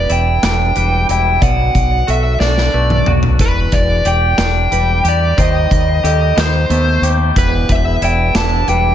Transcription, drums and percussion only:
0.10 closed hi-hat
0.43 snare, closed hi-hat
0.76 closed hi-hat
1.09 closed hi-hat
1.42 kick, closed hi-hat
1.75 kick, closed hi-hat
2.08 closed hi-hat
2.40 snare
2.57 snare
2.90 mid tom
3.06 mid tom
3.23 floor tom
3.39 kick, closed hi-hat
3.72 kick, closed hi-hat
4.05 closed hi-hat
4.38 snare, closed hi-hat
4.72 closed hi-hat
5.05 closed hi-hat
5.38 kick, closed hi-hat
5.71 kick, closed hi-hat
6.05 closed hi-hat
6.38 snare, closed hi-hat
6.70 closed hi-hat
7.03 closed hi-hat
7.36 kick, closed hi-hat
7.69 kick, closed hi-hat
8.02 closed hi-hat
8.35 snare, closed hi-hat
8.68 closed hi-hat

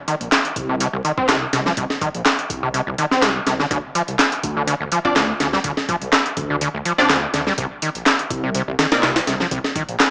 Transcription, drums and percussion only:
0.08 closed hi-hat
0.21 closed hi-hat
0.32 snare, clap, closed hi-hat
0.45 closed hi-hat
0.56 kick, closed hi-hat
0.80 closed hi-hat
1.05 closed hi-hat
1.18 kick
1.29 snare, clap, closed hi-hat
1.53 snare, closed hi-hat
1.66 snare
1.77 kick, closed hi-hat
1.90 snare
2.01 kick, closed hi-hat
2.15 closed hi-hat
2.26 snare, clap, closed hi-hat
2.39 closed hi-hat
2.50 kick, closed hi-hat
2.74 closed hi-hat
2.98 closed hi-hat
3.11 snare
3.22 snare, clap, closed hi-hat
3.47 snare, closed hi-hat
3.60 snare
3.71 kick, closed hi-hat
3.95 closed hi-hat
4.08 closed hi-hat
4.19 snare, clap, closed hi-hat
4.32 closed hi-hat
4.43 kick, closed hi-hat
4.68 closed hi-hat
4.92 closed hi-hat
5.05 kick
5.16 snare, clap, closed hi-hat
5.40 snare, closed hi-hat
5.53 snare
5.64 kick, closed hi-hat
5.77 snare
5.89 kick, closed hi-hat
6.02 closed hi-hat
6.13 snare, clap, closed hi-hat
6.26 closed hi-hat
6.37 kick, closed hi-hat
6.61 closed hi-hat
6.85 closed hi-hat
6.98 snare
7.10 snare, clap, closed hi-hat
7.34 snare, closed hi-hat
7.47 snare
7.58 kick, closed hi-hat
7.82 closed hi-hat
7.95 closed hi-hat
8.06 snare, clap, closed hi-hat
8.19 closed hi-hat
8.30 kick, closed hi-hat
8.55 closed hi-hat
8.79 snare, closed hi-hat
8.92 snare, closed hi-hat
9.03 snare, clap, closed hi-hat
9.16 snare, closed hi-hat
9.27 snare, closed hi-hat
9.40 snare
9.51 kick, closed hi-hat
9.64 snare
9.76 kick, closed hi-hat
9.89 closed hi-hat
10.00 snare, clap, closed hi-hat

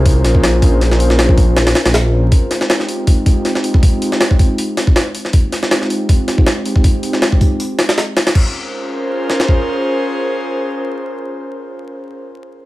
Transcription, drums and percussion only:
0.06 kick, open hi-hat
0.24 snare, open hi-hat
0.35 kick
0.43 snare, open hi-hat
0.62 kick, open hi-hat
0.81 snare, open hi-hat
0.91 snare
1.00 open hi-hat
1.10 snare
1.19 snare, open hi-hat
1.29 kick
1.38 kick, open hi-hat
1.57 snare, open hi-hat
1.67 snare, open hi-hat
1.75 snare, open hi-hat
1.86 snare, open hi-hat
1.94 snare, open hi-hat
2.32 kick, open hi-hat
2.51 snare, open hi-hat
2.61 snare
2.70 snare, open hi-hat
2.80 snare
2.88 open hi-hat
3.07 kick, open hi-hat
3.26 kick, open hi-hat
3.45 snare, open hi-hat
3.55 snare
3.64 open hi-hat
3.74 kick
3.83 kick, open hi-hat
4.02 open hi-hat
4.12 snare
4.21 snare, open hi-hat
4.31 kick
4.39 kick, open hi-hat
4.58 open hi-hat
4.77 snare, open hi-hat
4.87 kick
4.96 snare, open hi-hat
5.15 open hi-hat
5.25 snare
5.33 kick, open hi-hat
5.52 snare, open hi-hat
5.63 snare
5.71 snare, open hi-hat
5.82 snare
5.90 open hi-hat
6.09 kick, open hi-hat
6.28 snare, open hi-hat
6.38 kick
6.46 snare, open hi-hat
6.66 open hi-hat
6.76 kick
6.84 kick, open hi-hat
7.03 open hi-hat
7.13 snare
7.22 snare, open hi-hat
7.32 kick
7.41 kick, open hi-hat
7.60 open hi-hat
7.79 snare, open hi-hat
7.89 snare, open hi-hat
7.98 snare, open hi-hat
8.17 snare, open hi-hat
8.27 snare, open hi-hat
8.35 kick, crash
9.30 snare
9.40 snare
9.48 kick

